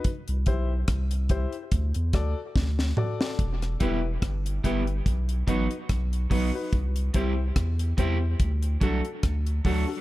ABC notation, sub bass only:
X:1
M:4/4
L:1/16
Q:"Swing 16ths" 1/4=72
K:Em
V:1 name="Sub bass" clef=bass
z C,, B,,,2 C,,3 z D,, E,, D,, z D,,2 z2 | E,,,2 E,,,2 G,,,2 G,,,2 B,,,2 A,,, z B,,,2 B,,, z | C,,2 C,,2 E,,2 E,,2 D,,2 C,, z D,,2 D,, z |]